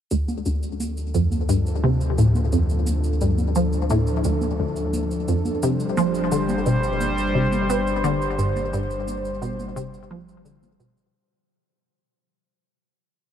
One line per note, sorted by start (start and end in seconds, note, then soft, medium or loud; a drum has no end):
0.11 5.59 D2 medium
0.11 0.22 D2 medium
0.11 5.59 F3 medium
0.11 11.10 D4 medium
0.11 5.58 A4 medium
0.11 shaker medium
0.28 high conga soft
0.28 shaker soft
0.46 0.64 D2 medium
0.46 shaker medium
0.63 shaker soft
0.80 high conga soft
0.80 shaker medium
0.97 shaker soft
1.14 1.33 F2 medium
1.14 shaker medium
1.32 high conga soft
1.32 shaker soft
1.49 1.67 G2 medium
1.49 shaker medium
1.66 shaker soft
1.84 2.11 C3 loud
1.84 high conga soft
2.01 shaker soft
2.18 2.36 A2 medium
2.18 shaker medium
2.35 high conga soft
2.35 shaker soft
2.52 2.63 F2 medium
2.52 shaker medium
2.69 shaker soft
2.87 high conga soft
2.87 shaker medium
3.04 shaker soft
3.21 3.49 G2 medium
3.21 shaker medium
3.38 high conga soft
3.38 shaker soft
3.55 3.74 F3 medium
3.55 shaker medium
3.73 shaker soft
3.90 4.01 A2 medium
3.90 high conga soft
3.90 shaker medium
4.07 shaker soft
4.24 4.36 D2 medium
4.24 shaker medium
4.41 high conga soft
4.41 shaker soft
4.60 4.78 D2 medium
4.76 shaker soft
4.93 high conga soft
4.93 shaker medium
5.11 shaker soft
5.28 5.47 F2 medium
5.28 shaker medium
5.45 high conga soft
5.45 shaker soft
5.62 11.11 G1 medium
5.62 5.81 C3 medium
5.62 11.11 G3 medium
5.62 11.11 C5 medium
5.62 shaker medium
5.80 shaker soft
5.97 6.25 F3 loud
5.97 high conga soft
5.97 shaker medium
6.14 shaker soft
6.32 6.50 D3 medium
6.32 shaker medium
6.49 high conga soft
6.49 shaker soft
6.66 6.77 B2 medium
6.66 shaker medium
6.83 shaker soft
7.01 high conga soft
7.01 shaker medium
7.18 shaker soft
7.35 7.63 C3 medium
7.52 high conga soft
7.52 shaker soft
7.70 7.88 B3 medium
7.70 shaker medium
7.87 shaker soft
8.04 8.15 D3 loud
8.04 high conga soft
8.04 shaker medium
8.22 shaker soft
8.38 8.49 G2 medium
8.38 shaker medium
8.56 high conga soft
8.56 shaker soft
8.73 8.91 G2 medium
8.73 shaker medium
8.90 shaker soft
9.08 high conga soft
9.08 shaker medium
9.25 shaker soft
9.42 9.60 B2 medium
9.42 shaker medium
9.59 high conga soft
9.59 shaker soft
9.76 9.95 C3 medium
9.76 shaker medium
9.94 shaker soft
10.11 10.38 F3 medium
10.11 high conga soft
10.28 shaker soft
10.45 10.64 D3 medium
10.45 shaker medium
10.63 high conga soft
10.63 shaker soft
10.80 10.91 B2 medium
10.80 shaker medium
10.97 shaker soft